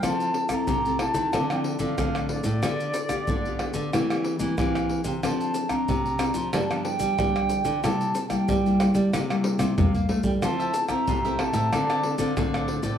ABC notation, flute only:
X:1
M:4/4
L:1/16
Q:1/4=92
K:F
V:1 name="Flute"
a3 b3 a3 g2 f3 d2- | d8- d2 z2 f3 g | a3 b4- b a2 g6 | a3 g6 z3 f3 g |
a3 b3 a4- a f3 d2 |]